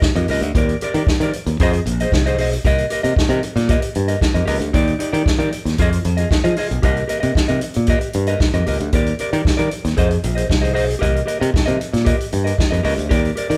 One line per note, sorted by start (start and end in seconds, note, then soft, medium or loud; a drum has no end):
0.02 muted clean electric guitar stroke soft
0.02 kick loud
0.02 snare loud
0.15 0.25 F2 loud
0.15 0.28 G4 medium
0.15 0.29 A#4 medium
0.15 0.30 D#5 medium
0.15 closed hi-hat soft
0.28 0.38 C#2 loud
0.28 0.49 G4 medium
0.28 0.43 A#4 medium
0.28 0.42 D#5 loud
0.28 open hi-hat medium
0.41 0.51 D2 loud
0.41 muted clean electric guitar stroke soft
0.41 closed hi-hat soft
0.55 0.73 D#2 loud
0.55 0.75 G4 medium
0.55 0.76 A#4 medium
0.55 0.76 D5 medium
0.55 kick loud
0.55 closed hi-hat medium
0.69 closed hi-hat soft
0.81 0.97 G4 medium
0.81 0.96 A#4 medium
0.81 0.95 D5 medium
0.81 closed hi-hat medium
0.94 1.03 D#3 medium
0.94 1.08 G4 medium
0.94 1.09 A#4 medium
0.94 1.09 D5 medium
0.94 closed hi-hat medium
1.07 muted clean electric guitar stroke soft
1.07 kick loud
1.07 snare loud
1.20 1.29 D#3 medium
1.20 1.35 A#4 medium
1.20 1.35 D5 medium
1.20 closed hi-hat soft
1.24 1.34 G4 medium
1.33 muted clean electric guitar stroke soft
1.33 closed hi-hat medium
1.46 1.56 D#2 loud
1.46 muted clean electric guitar stroke soft
1.46 closed hi-hat soft
1.60 1.78 F2 loud
1.60 1.80 G#4 loud
1.60 1.74 C5 loud
1.60 1.73 D#5 loud
1.60 kick loud
1.60 closed hi-hat medium
1.73 muted clean electric guitar stroke soft
1.73 closed hi-hat medium
1.86 2.04 A#1 loud
1.86 muted clean electric guitar stroke soft
1.86 closed hi-hat medium
2.00 2.13 G#4 medium
2.00 2.14 C5 medium
2.00 2.14 D#5 medium
2.00 closed hi-hat medium
2.12 2.38 C2 loud
2.12 muted clean electric guitar stroke medium
2.12 kick loud
2.12 snare loud
2.26 2.37 G#4 medium
2.26 2.39 C5 medium
2.26 2.40 D#5 medium
2.26 closed hi-hat soft
2.38 2.56 B1 loud
2.38 2.54 G#4 medium
2.38 2.52 C5 medium
2.38 2.51 D#5 medium
2.38 open hi-hat medium
2.52 muted clean electric guitar stroke medium
2.52 closed hi-hat medium
2.65 2.83 C2 loud
2.65 2.85 G4 medium
2.65 2.85 A#4 loud
2.65 2.85 D#5 loud
2.65 kick loud
2.65 closed hi-hat medium
2.78 closed hi-hat soft
2.90 3.04 G4 medium
2.90 3.03 A#4 medium
2.90 3.02 D#5 medium
2.90 closed hi-hat medium
3.03 3.13 C3 loud
3.03 3.15 G4 medium
3.03 3.16 A#4 medium
3.03 3.16 D#5 medium
3.03 closed hi-hat soft
3.16 muted clean electric guitar stroke medium
3.16 muted fingered electric bass stroke medium
3.16 kick loud
3.16 snare loud
3.29 3.39 C3 loud
3.29 3.43 G4 medium
3.29 3.43 A#4 medium
3.29 3.44 D#5 medium
3.29 closed hi-hat medium
3.43 muted clean electric guitar stroke soft
3.43 closed hi-hat medium
3.56 3.74 A#2 medium
3.56 muted clean electric guitar stroke medium
3.56 snare soft
3.56 closed hi-hat soft
3.69 3.89 G4 medium
3.69 3.83 A#4 medium
3.69 3.81 D#5 loud
3.69 kick loud
3.69 closed hi-hat medium
3.82 muted clean electric guitar stroke medium
3.82 closed hi-hat medium
3.95 4.14 G2 medium
3.95 muted clean electric guitar stroke soft
3.95 closed hi-hat medium
4.08 4.20 G4 soft
4.08 4.21 A#4 medium
4.08 4.21 D#5 medium
4.08 closed hi-hat medium
4.21 muted clean electric guitar stroke soft
4.21 kick loud
4.21 snare loud
4.34 4.44 F2 medium
4.34 4.44 G4 medium
4.34 4.46 A#4 medium
4.34 4.47 D#5 medium
4.34 closed hi-hat soft
4.46 4.57 C#2 loud
4.46 4.67 G4 medium
4.46 4.60 A#4 medium
4.46 4.59 D#5 medium
4.46 open hi-hat medium
4.60 4.69 D2 loud
4.60 muted clean electric guitar stroke soft
4.60 closed hi-hat soft
4.73 4.93 D#2 loud
4.73 4.94 D#4 medium
4.73 4.94 G4 medium
4.73 4.94 D5 loud
4.73 kick loud
4.73 closed hi-hat medium
4.87 closed hi-hat soft
4.99 5.13 D#4 medium
4.99 5.13 G4 medium
4.99 5.11 D5 medium
4.99 closed hi-hat medium
5.13 5.22 D#3 medium
5.13 5.25 D#4 medium
5.13 5.26 G4 medium
5.13 5.27 D5 medium
5.13 closed hi-hat soft
5.26 muted fingered electric bass stroke soft
5.26 muted clean electric guitar stroke soft
5.26 kick loud
5.26 snare loud
5.39 5.48 D#3 medium
5.39 5.51 D#4 medium
5.39 5.52 G4 medium
5.39 5.53 D5 medium
5.39 closed hi-hat soft
5.52 muted clean electric guitar stroke soft
5.52 closed hi-hat medium
5.65 5.75 D#2 medium
5.65 muted clean electric guitar stroke soft
5.65 snare soft
5.65 closed hi-hat medium
5.78 5.97 F2 loud
5.78 5.99 F4 loud
5.78 5.92 G#4 medium
5.78 5.91 D#5 loud
5.78 kick loud
5.78 closed hi-hat medium
5.92 muted clean electric guitar stroke medium
5.92 closed hi-hat medium
6.05 6.23 F2 loud
6.05 muted clean electric guitar stroke soft
6.05 closed hi-hat medium
6.17 6.30 F4 medium
6.17 6.30 G#4 medium
6.17 6.31 D#5 medium
6.17 closed hi-hat soft
6.31 muted clean electric guitar stroke medium
6.31 kick loud
6.31 snare loud
6.44 6.53 F3 loud
6.44 6.56 F4 medium
6.44 6.57 G#4 medium
6.44 6.58 D#5 medium
6.44 closed hi-hat soft
6.56 6.77 F4 medium
6.56 6.70 G#4 medium
6.56 6.68 D#5 medium
6.56 open hi-hat medium
6.70 6.80 B1 medium
6.70 muted clean electric guitar stroke soft
6.70 closed hi-hat soft
6.82 7.02 C2 loud
6.82 7.03 G4 medium
6.82 7.04 A#4 loud
6.82 7.04 D#5 medium
6.82 kick loud
6.82 closed hi-hat medium
6.96 closed hi-hat soft
7.08 7.21 G4 medium
7.08 7.21 A#4 medium
7.08 7.19 D#5 medium
7.08 closed hi-hat medium
7.20 7.32 C3 loud
7.20 7.34 G4 medium
7.20 7.35 A#4 medium
7.20 7.36 D#5 medium
7.20 closed hi-hat medium
7.35 muted clean electric guitar stroke soft
7.35 kick loud
7.35 snare loud
7.48 7.58 C3 loud
7.48 7.61 G4 medium
7.48 7.62 A#4 medium
7.48 7.63 D#5 medium
7.48 closed hi-hat medium
7.61 muted clean electric guitar stroke soft
7.61 closed hi-hat medium
7.74 7.94 A#2 loud
7.74 muted clean electric guitar stroke soft
7.74 closed hi-hat medium
7.87 8.08 G4 medium
7.87 8.01 A#4 medium
7.87 8.00 D#5 loud
7.87 kick loud
7.87 closed hi-hat medium
8.01 muted clean electric guitar stroke medium
8.01 closed hi-hat medium
8.13 8.33 G2 loud
8.13 muted clean electric guitar stroke soft
8.13 closed hi-hat medium
8.27 8.40 G4 medium
8.27 8.41 A#4 medium
8.27 8.41 D#5 medium
8.27 closed hi-hat soft
8.40 muted clean electric guitar stroke soft
8.40 kick loud
8.40 snare loud
8.54 8.63 F2 loud
8.54 8.65 G4 medium
8.54 8.67 A#4 medium
8.54 8.67 D#5 medium
8.54 closed hi-hat soft
8.66 8.77 C#2 loud
8.66 8.86 G4 medium
8.66 8.81 A#4 medium
8.66 8.79 D#5 medium
8.66 open hi-hat medium
8.80 8.89 D2 loud
8.80 muted clean electric guitar stroke soft
8.80 closed hi-hat medium
8.93 9.11 D#2 loud
8.93 9.13 G4 medium
8.93 9.13 A#4 medium
8.93 9.14 D5 medium
8.93 kick loud
8.93 closed hi-hat medium
9.06 closed hi-hat soft
9.19 9.33 G4 medium
9.19 9.32 A#4 medium
9.19 9.31 D5 medium
9.19 closed hi-hat medium
9.33 9.42 D#3 loud
9.33 9.45 G4 medium
9.33 9.46 A#4 medium
9.33 9.47 D5 medium
9.33 closed hi-hat medium
9.45 muted fingered electric bass stroke medium
9.45 muted clean electric guitar stroke soft
9.45 kick loud
9.45 snare loud
9.57 9.68 D#3 loud
9.57 9.70 G4 medium
9.57 9.71 A#4 medium
9.57 9.72 D5 medium
9.57 closed hi-hat medium
9.71 muted clean electric guitar stroke soft
9.71 closed hi-hat medium
9.85 9.94 D#2 loud
9.85 muted clean electric guitar stroke medium
9.85 snare soft
9.85 closed hi-hat soft
9.97 10.16 F2 medium
9.97 10.17 G#4 medium
9.97 10.11 C5 medium
9.97 10.10 D#5 loud
9.97 kick loud
9.97 closed hi-hat medium
10.11 muted clean electric guitar stroke medium
10.11 closed hi-hat medium
10.23 10.42 A#1 loud
10.23 muted clean electric guitar stroke soft
10.23 closed hi-hat medium
10.35 10.47 G#4 medium
10.35 10.48 C5 medium
10.35 10.49 D#5 medium
10.35 closed hi-hat medium
10.48 10.75 C2 medium
10.48 muted clean electric guitar stroke soft
10.48 kick loud
10.48 snare loud
10.61 10.72 G#4 medium
10.61 10.74 C5 medium
10.61 10.74 D#5 medium
10.61 closed hi-hat soft
10.74 10.94 B1 loud
10.74 10.94 G#4 medium
10.74 10.87 C5 loud
10.74 10.86 D#5 loud
10.74 open hi-hat medium
10.87 muted clean electric guitar stroke soft
10.87 closed hi-hat soft
10.99 11.21 C2 loud
10.99 11.20 G4 medium
10.99 11.21 A#4 medium
10.99 11.22 D#5 loud
10.99 kick medium
10.99 closed hi-hat medium
11.16 closed hi-hat soft
11.26 11.41 G4 medium
11.26 11.40 A#4 medium
11.26 11.39 D#5 medium
11.26 closed hi-hat medium
11.40 11.50 C3 loud
11.40 11.52 G4 medium
11.40 11.53 A#4 medium
11.40 11.53 D#5 medium
11.40 closed hi-hat medium
11.53 muted clean electric guitar stroke medium
11.53 kick loud
11.53 snare loud
11.66 11.77 C3 loud
11.66 11.79 G4 medium
11.66 11.79 A#4 medium
11.66 11.80 D#5 medium
11.66 closed hi-hat soft
11.80 muted clean electric guitar stroke soft
11.80 closed hi-hat medium
11.93 12.12 A#2 medium
11.93 muted clean electric guitar stroke soft
11.93 snare soft
11.93 closed hi-hat soft
12.05 12.25 G4 medium
12.05 12.19 A#4 medium
12.05 12.17 D#5 loud
12.05 kick loud
12.05 closed hi-hat medium
12.19 muted clean electric guitar stroke soft
12.19 closed hi-hat medium
12.32 12.51 G2 medium
12.32 muted clean electric guitar stroke soft
12.32 closed hi-hat medium
12.44 12.57 G4 medium
12.44 12.57 A#4 medium
12.44 12.59 D#5 medium
12.44 closed hi-hat medium
12.58 muted clean electric guitar stroke soft
12.58 kick loud
12.58 snare loud
12.71 12.81 F2 medium
12.71 12.82 G4 medium
12.71 12.83 A#4 medium
12.71 12.84 D#5 medium
12.71 closed hi-hat soft
12.83 12.94 C#2 loud
12.83 13.04 G4 medium
12.83 12.96 A#4 loud
12.83 12.95 D#5 loud
12.83 open hi-hat medium
12.96 13.07 D2 loud
12.96 muted clean electric guitar stroke medium
12.96 closed hi-hat medium
13.09 13.29 D#2 loud
13.09 13.30 G4 loud
13.09 13.30 A#4 loud
13.09 13.31 D5 loud
13.09 kick loud
13.09 closed hi-hat medium
13.25 closed hi-hat soft
13.36 13.50 G4 medium
13.36 13.49 A#4 medium
13.36 13.48 D5 medium
13.36 closed hi-hat medium
13.50 13.57 D#3 loud
13.50 13.57 G4 medium
13.50 13.57 A#4 medium
13.50 13.57 D5 medium
13.50 closed hi-hat medium